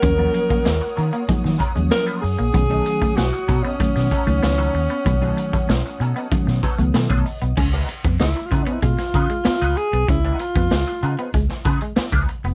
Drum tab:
CC |----------------|----------------|----------------|x---------------|
HH |x-xxx-xxx-xxxxox|xxxxxxxxxxxxxxox|xxxxxxxxx-xxx-ox|-xxx-xxxxxxx-xxx|
SD |----o----o--o---|----o----o--o---|----o----o--o---|----o----o--o---|
BD |o--o----o-o-----|o--o--o-o-o-----|o--o----o-o--o--|o--o--o-o-o-----|

CC |----------------|
HH |xxxx-xxxxxxx-xxx|
SD |----o----o--o---|
BD |o--o----o-o--o--|